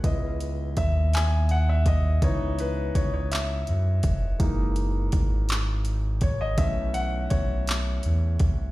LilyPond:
<<
  \new Staff \with { instrumentName = "Grand piano" } { \time 6/8 \key cis \minor \tempo 4. = 55 r4 e''8 gis''8 fis''16 e''16 dis''8 | cis''8 b'8 cis''16 cis''16 e''4. | r2 r8 cis''16 dis''16 | e''8 fis''8 cis''8 r4. | }
  \new Staff \with { instrumentName = "Grand piano" } { \time 6/8 \key cis \minor <b e' dis''>4. r4. | <e b dis'>8 r2 r8 | <e gis ais dis'>8 r2 r8 | <e a cis'>8 r2 r8 | }
  \new Staff \with { instrumentName = "Analog synth bass" } { \clef bass \time 6/8 \key cis \minor cis,4 dis,2 | cis,4 cis,4 fis,8 eis,,8 | fis,,4 gis,,2 | b,,4 b,,4 e,8 bis,,8 | }
  \new DrumStaff \with { instrumentName = "Drums" } \drummode { \time 6/8 <hh bd>8 hh8 <hh bd>8 <hc hh>8 hh8 <hh bd>8 | <hh bd>8 hh8 <hh bd>8 <hc hh>8 hh8 <hh bd>8 | <hh bd>8 hh8 <hh bd>8 <hc hh>8 hh8 <hh bd>8 | <hh bd>8 hh8 <hh bd>8 <hc hh>8 hh8 <hh bd>8 | }
>>